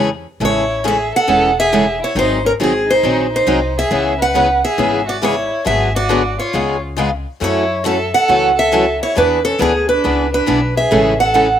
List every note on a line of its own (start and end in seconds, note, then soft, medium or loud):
0.00 0.24 E2 medium
0.40 1.10 A1 medium
0.40 0.62 C#3 medium
0.40 0.63 E3 medium
0.40 0.63 G#3 medium
0.40 0.63 A3 medium
0.40 0.63 C#4 medium
0.40 0.63 E4 medium
0.40 0.83 E4 medium
0.40 0.63 G#4 medium
0.40 0.63 A4 medium
0.45 0.87 C#5 medium
0.84 0.96 C#3 medium
0.84 0.96 E3 medium
0.84 0.96 G#3 medium
0.84 0.96 A3 medium
0.84 0.96 C#4 medium
0.84 0.96 E4 medium
0.84 0.96 G#4 medium
0.84 1.12 G#4 medium
0.84 0.96 A4 medium
0.84 1.12 E5 medium
1.15 1.55 A4 medium
1.15 1.59 F#5 medium
1.27 1.98 E1 medium
1.27 1.50 C#3 medium
1.27 1.50 E3 medium
1.27 1.50 G#3 medium
1.27 1.50 A3 medium
1.27 1.50 C#4 medium
1.27 1.50 E4 medium
1.27 1.50 G#4 medium
1.27 1.50 A4 medium
1.59 1.99 G#4 medium
1.59 1.99 E5 medium
1.73 1.84 C#3 medium
1.73 1.84 E3 medium
1.73 1.84 G#3 medium
1.73 1.84 A3 medium
1.73 1.84 C#4 medium
1.73 1.84 E4 medium
1.73 1.85 G#4 medium
1.73 1.84 A4 medium
2.02 2.16 E4 medium
2.02 2.18 C#5 medium
2.15 2.51 G#1 medium
2.15 2.38 D#3 medium
2.15 2.38 F#3 medium
2.15 2.38 C4 medium
2.15 2.38 D#4 medium
2.15 2.43 D#4 medium
2.15 2.38 G#4 medium
2.15 2.43 C5 medium
2.44 2.51 C#4 medium
2.44 2.51 A#4 medium
2.60 2.97 G#1 medium
2.60 2.71 D#3 medium
2.60 2.72 F#3 medium
2.60 2.86 C4 medium
2.60 2.72 C4 medium
2.60 2.72 D#4 medium
2.60 2.72 G#4 medium
2.60 2.90 G#4 medium
2.88 3.29 D#4 medium
2.88 3.34 C5 medium
3.03 3.41 A#1 medium
3.03 3.25 D#3 medium
3.03 3.25 F#3 medium
3.03 3.26 C4 medium
3.03 3.26 D#4 medium
3.03 3.26 G#4 medium
3.33 3.73 D#4 medium
3.33 3.78 C5 medium
3.47 3.84 C2 medium
3.47 3.59 D#3 medium
3.47 3.59 F#3 medium
3.47 3.59 C4 medium
3.47 3.59 D#4 medium
3.47 3.59 G#4 medium
3.77 4.17 G#4 medium
3.77 4.22 E5 medium
3.91 4.61 C#2 medium
3.91 4.13 C#3 medium
3.91 4.13 E3 medium
3.91 4.13 G#3 medium
3.91 4.13 B3 medium
3.91 4.13 C#4 medium
3.91 4.13 E4 medium
3.91 4.13 G#4 medium
4.20 4.60 B4 medium
4.20 4.64 F#5 loud
4.34 4.46 C#3 medium
4.34 4.46 E3 medium
4.34 4.47 G#3 medium
4.34 4.46 B3 medium
4.34 4.47 C#4 medium
4.34 4.47 E4 medium
4.34 4.47 G#4 medium
4.64 5.04 G#4 medium
4.64 5.09 E5 medium
4.78 5.48 G#1 medium
4.78 5.00 C#3 medium
4.78 5.00 E3 medium
4.78 5.00 G#3 medium
4.78 5.00 B3 medium
4.78 5.00 C#4 medium
4.78 5.01 E4 medium
4.78 5.01 G#4 medium
5.07 5.22 F#4 medium
5.07 5.24 D5 medium
5.22 5.34 C#3 medium
5.22 5.34 E3 medium
5.22 5.34 G#3 medium
5.22 5.34 B3 medium
5.22 5.34 C#4 medium
5.22 5.34 E4 medium
5.22 5.64 E4 medium
5.22 5.34 G#4 medium
5.22 5.66 C#5 medium
5.65 6.36 G#1 medium
5.65 5.87 D3 medium
5.65 5.87 F#3 medium
5.65 5.88 B3 medium
5.65 5.88 F#4 medium
5.65 5.88 G#4 medium
5.65 5.93 G#4 medium
5.65 5.92 E5 medium
5.95 6.35 F#4 medium
5.95 6.39 D5 medium
6.09 6.21 D3 medium
6.09 6.21 F#3 medium
6.09 6.21 B3 medium
6.09 6.22 F#4 medium
6.09 6.22 G#4 medium
6.38 6.79 F4 medium
6.38 6.79 C#5 medium
6.53 7.24 C#2 medium
6.53 6.75 C#3 medium
6.53 6.75 G#3 medium
6.53 6.75 B3 medium
6.53 6.76 F4 medium
6.53 6.76 G#4 medium
6.96 7.09 C#3 medium
6.96 7.09 G#3 medium
6.96 7.09 B3 medium
6.96 7.09 F4 medium
6.96 7.09 G#4 medium
7.40 8.11 F#2 medium
7.40 7.62 C#3 medium
7.40 7.63 E3 medium
7.40 7.63 F#3 medium
7.40 7.63 A3 medium
7.40 7.63 C#4 medium
7.40 7.63 E4 medium
7.40 7.83 E4 medium
7.40 7.63 F#4 medium
7.40 7.64 A4 medium
7.40 7.83 C#5 medium
7.84 7.96 C#3 medium
7.84 7.96 E3 medium
7.84 7.97 F#3 medium
7.84 7.96 A3 medium
7.84 7.97 C#4 medium
7.84 7.97 E4 medium
7.84 7.97 F#4 medium
7.84 8.12 A4 medium
7.84 7.97 A4 medium
7.84 8.12 E5 medium
8.14 8.54 A4 medium
8.14 8.54 F#5 loud
8.28 8.99 C#2 medium
8.28 8.50 C#3 medium
8.28 8.50 E3 medium
8.28 8.51 F#3 medium
8.28 8.51 A3 medium
8.28 8.51 C#4 medium
8.28 8.51 E4 medium
8.28 8.51 F#4 medium
8.28 8.51 A4 medium
8.57 8.97 A4 medium
8.57 8.99 E5 medium
8.72 8.84 C#3 medium
8.72 8.84 E3 medium
8.72 8.84 F#3 medium
8.72 8.84 A3 medium
8.72 8.84 C#4 medium
8.72 8.84 E4 medium
8.72 8.85 F#4 loud
8.72 8.85 A4 medium
9.03 9.17 E4 medium
9.03 9.18 C#5 medium
9.15 9.51 E2 medium
9.15 9.38 E3 medium
9.15 9.38 B3 medium
9.15 9.38 D4 medium
9.15 9.43 D4 medium
9.15 9.38 G#4 medium
9.15 9.38 B4 medium
9.15 9.43 B4 medium
9.45 9.60 C#4 medium
9.45 9.61 A4 medium
9.59 9.97 D2 medium
9.59 9.71 E3 medium
9.59 9.71 B3 medium
9.59 9.87 B3 medium
9.59 9.72 D4 medium
9.59 9.72 G#4 medium
9.59 9.87 G#4 medium
9.59 9.72 B4 medium
9.89 10.30 D4 medium
9.89 10.29 B4 medium
10.04 10.41 C#2 medium
10.04 10.26 E3 medium
10.04 10.26 B3 medium
10.04 10.26 D4 medium
10.04 10.26 G#4 medium
10.04 10.26 B4 medium
10.33 10.73 D4 medium
10.33 10.74 B4 medium
10.46 10.85 B1 medium
10.46 10.58 E3 medium
10.46 10.59 B3 medium
10.46 10.59 D4 medium
10.46 10.59 G#4 medium
10.46 10.59 B4 medium
10.77 11.17 G#4 medium
10.77 11.17 E5 medium
10.91 11.59 A1 medium
10.91 11.13 C#3 medium
10.91 11.13 E3 medium
10.91 11.13 G#3 medium
10.91 11.13 A3 medium
10.91 11.13 C#4 medium
10.91 11.13 E4 medium
10.91 11.13 G#4 medium
10.91 11.13 A4 medium
11.20 11.59 A4 medium
11.20 11.59 F#5 loud
11.34 11.46 C#3 medium
11.34 11.46 E3 medium
11.34 11.46 G#3 medium
11.34 11.46 A3 medium
11.34 11.47 C#4 medium
11.34 11.47 E4 medium
11.34 11.47 G#4 medium
11.34 11.47 A4 medium